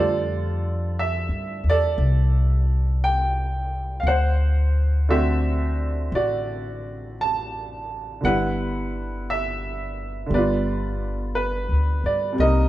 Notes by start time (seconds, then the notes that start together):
Already playing: F2 D3 G3 A3 F4 A4 D5
0.99 E5
1.29 G2
1.64 E2
1.70 A4 D5
1.98 C2
3.04 G5
4.00 D2 F5
4.07 C5 F#5
5.09 D3 A3 C4 F#4 E5
6.12 A1 F#4 D5
7.21 A5
8.21 G1 D3 G3 B3
8.25 E4 B4 F#5
9.30 E5
10.26 D3 G3
10.30 G1 B3 D5
10.35 F4 B4
11.35 B4
11.69 D2
12.04 G2 D5
12.33 C3 G3
12.38 C2 A#3 A#4 D#5
12.43 D#4